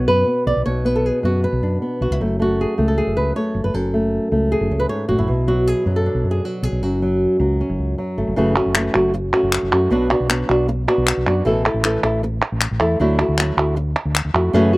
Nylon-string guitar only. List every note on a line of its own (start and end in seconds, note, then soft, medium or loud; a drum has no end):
0.00 0.65 B2 medium
0.00 0.26 B3 medium
0.08 0.46 B4 medium
0.27 0.63 B3 medium
0.47 0.65 D5 medium
0.66 2.20 B2 medium
0.66 0.86 C#5 medium
0.85 1.22 B3 medium
0.85 1.24 B4 medium
0.96 1.06 A4 medium
1.06 1.63 G#4 medium
1.23 1.81 B3 medium
1.23 1.43 F#4 medium
1.44 2.01 B4 medium
1.63 2.12 D4 soft
1.82 2.18 B3 medium
2.02 2.21 F#4 medium
2.12 2.79 E4 medium
2.21 3.73 F#2 medium
2.21 2.39 A3 soft
2.39 2.77 A3 medium
2.39 2.88 F#4 medium
2.61 2.96 G#4 medium
2.78 3.34 A3 medium
2.88 3.16 A4 medium
2.98 3.55 G#4 medium
3.17 3.36 B4 medium
3.36 3.72 A3 medium
3.36 3.64 C#5 medium
3.64 3.74 B4 medium
3.74 4.90 F#2 medium
3.74 4.79 A4 medium
3.94 4.31 A3 medium
4.32 5.26 A3 medium
4.52 5.18 G#4 medium
4.71 5.27 C#4 soft
4.80 4.89 B4 medium
4.89 5.09 G#2 medium
4.89 5.08 C#5 medium
5.09 5.28 A2 medium
5.09 5.28 F#4 medium
5.18 5.86 E4 medium
5.28 6.82 B2 medium
5.47 5.86 F#3 medium
5.47 5.67 F#4 medium
5.67 5.96 G#4 medium
5.87 6.44 F#3 medium
5.96 6.31 A4 medium
6.06 6.81 D4 soft
6.31 6.45 G#4 medium
6.45 7.02 F#3 medium
6.45 6.63 F#4 medium
6.63 6.83 G#4 medium
6.83 9.91 F#2 medium
6.83 8.37 F#4 medium
7.02 7.39 F#3 medium
7.40 7.97 F#3 medium
7.61 8.36 C#4 soft
7.98 8.35 F#3 medium
8.18 8.36 A3 soft
8.36 8.55 C#3 medium
8.36 8.55 E3 medium
8.36 8.56 A3 medium
8.36 8.56 C#4 medium
8.36 8.55 F#4 medium
8.56 8.75 A3 soft
8.56 8.75 C#4 medium
8.56 8.75 F#4 medium
8.75 8.94 E3 medium
8.75 8.94 A3 medium
8.75 8.94 C#4 medium
8.75 8.93 F#4 medium
8.94 9.13 A3 soft
8.94 9.14 C#4 soft
8.94 9.13 F#4 medium
9.14 muted nylon-string guitar stroke medium
9.33 9.72 A3 soft
9.33 9.71 C#4 medium
9.33 9.70 F#4 medium
9.72 9.91 A3 soft
9.72 9.91 C#4 medium
9.72 9.90 F#4 medium
9.90 10.09 B2 medium
9.90 10.10 F#3 medium
9.90 10.10 B3 medium
9.90 10.10 D4 medium
9.90 10.09 F#4 medium
10.10 10.28 B3 soft
10.10 10.29 D4 medium
10.10 10.29 F#4 medium
10.29 10.48 F#3 medium
10.29 10.48 B3 medium
10.29 10.48 D4 medium
10.29 10.48 F#4 medium
10.49 10.67 B3 soft
10.49 10.68 D4 medium
10.49 10.67 F#4 medium
10.68 muted nylon-string guitar stroke medium
10.88 11.26 B3 soft
10.88 11.26 D4 soft
10.88 11.25 F#4 medium
11.26 11.45 B3 soft
11.26 11.45 D4 medium
11.26 11.45 F#4 medium
11.45 11.64 B2 medium
11.45 11.64 E3 medium
11.45 11.64 A3 medium
11.45 11.64 E4 medium
11.45 11.64 A4 medium
11.65 11.83 A3 soft
11.65 11.84 E4 medium
11.65 11.83 A4 medium
11.84 12.02 E3 medium
11.84 12.03 A3 medium
11.84 12.03 E4 medium
11.84 12.02 A4 medium
12.03 12.22 A3 soft
12.03 12.22 E4 medium
12.03 12.22 A4 soft
12.23 muted nylon-string guitar stroke medium
12.80 12.99 A3 medium
12.80 12.99 E4 medium
12.80 12.99 A4 medium
13.00 13.18 D3 medium
13.00 13.18 F#3 medium
13.00 13.19 A3 medium
13.00 13.18 E4 medium
13.00 13.18 F#4 medium
13.19 13.38 A3 soft
13.19 13.38 E4 medium
13.19 13.37 F#4 soft
13.38 13.57 F#3 medium
13.38 13.57 A3 medium
13.38 13.57 E4 medium
13.38 13.56 F#4 medium
13.57 13.76 A3 soft
13.57 13.76 E4 soft
13.57 13.76 F#4 medium
13.76 muted nylon-string guitar stroke medium
14.34 14.53 A3 soft
14.34 14.53 E4 soft
14.34 14.53 F#4 medium
14.53 14.72 C#3 medium
14.53 14.72 E3 medium
14.53 14.72 A3 loud
14.53 14.73 C#4 loud
14.53 14.72 F#4 medium
14.73 14.78 C#4 medium
14.73 14.78 F#4 medium